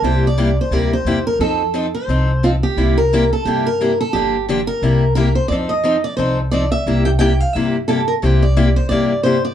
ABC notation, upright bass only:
X:1
M:4/4
L:1/8
Q:"Swing" 1/4=176
K:Cmix
V:1 name="Upright bass" clef=bass
C,,4 D,,2 E,,2 | F,,4 C,,4 | C,,4 G,,4 | G,,,4 C,,4 |
F,,4 C,,4 | C,,4 G,,4 | C,,4 G,,4 |]